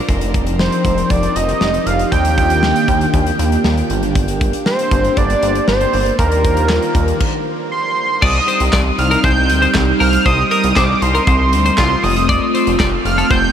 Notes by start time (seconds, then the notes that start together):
0.09 F1 F3 C4 D#4 G4 A#4, kick, closed hi-hat
0.21 closed hi-hat
0.34 kick, closed hi-hat
0.47 closed hi-hat
0.59 C5, snare
0.72 closed hi-hat
0.85 F1, kick, closed hi-hat
0.98 closed hi-hat
1.10 F1 D5, kick, closed hi-hat
1.23 closed hi-hat
1.35 F1 D#5, closed hi-hat
1.49 closed hi-hat
1.61 F1, snare
1.74 closed hi-hat
1.86 F1 F5, closed hi-hat
1.99 closed hi-hat
2.12 D#2 D#3 A#3 D4 F4 G5, kick, closed hi-hat
2.25 closed hi-hat
2.38 kick, closed hi-hat
2.50 closed hi-hat
2.63 snare
2.76 closed hi-hat
2.88 D#2, kick, closed hi-hat
3.01 closed hi-hat
3.14 D#2, kick, closed hi-hat
3.26 closed hi-hat
3.39 D#2, closed hi-hat
3.52 closed hi-hat
3.64 D#2, snare
3.77 closed hi-hat
3.90 G1, closed hi-hat
4.03 closed hi-hat
4.15 kick, closed hi-hat
4.28 closed hi-hat
4.41 kick, closed hi-hat
4.53 closed hi-hat
4.66 C5, snare
4.79 closed hi-hat
4.91 G1, kick, closed hi-hat
5.04 closed hi-hat
5.17 G1 D5, kick, closed hi-hat
5.30 closed hi-hat
5.43 G1, closed hi-hat
5.55 closed hi-hat
5.68 G1 C5, snare
5.81 closed hi-hat
5.93 G1, open hi-hat
6.06 closed hi-hat
6.19 D#2 D#3 F4 A#4, kick, closed hi-hat
6.32 closed hi-hat
6.44 kick, closed hi-hat
6.57 closed hi-hat
6.70 snare, clap
6.82 closed hi-hat
6.95 D#2, kick, closed hi-hat
7.08 closed hi-hat
7.21 kick, crash
7.72 C6
8.22 C2 G3 C4 D#4 D5 D#6, kick, crash
8.48 C5, closed hi-hat
8.60 C2, closed hi-hat
8.73 C2 D5, kick, snare, clap, closed hi-hat
8.99 C2 F6, closed hi-hat
9.11 A#4, closed hi-hat
9.24 C2 C5 G6, kick, closed hi-hat
9.50 D2, closed hi-hat
9.62 C5, closed hi-hat
9.75 C2, kick, snare, clap, closed hi-hat
10.00 C2 A#4 F6, open hi-hat
10.13 closed hi-hat
10.25 C2 C5 D#6, kick, closed hi-hat
10.51 A#4 D#6, closed hi-hat
10.64 C2, closed hi-hat
10.76 C2 C5 D6, kick, snare, clap, closed hi-hat
11.02 C2 C6, closed hi-hat
11.15 A#4, closed hi-hat
11.27 C2 C5, kick, closed hi-hat
11.53 D2, closed hi-hat
11.66 C5, closed hi-hat
11.78 C2 F4 C6, kick, snare, clap, closed hi-hat
12.03 F1 A3 F4 D#6, open hi-hat
12.16 closed hi-hat
12.29 D5, kick, closed hi-hat
12.54 C5, closed hi-hat
12.67 F1, closed hi-hat
12.80 F1 D5, kick, snare, clap, closed hi-hat
13.05 F1 F6, closed hi-hat
13.18 A4, closed hi-hat
13.30 F1 C5 G6, kick, closed hi-hat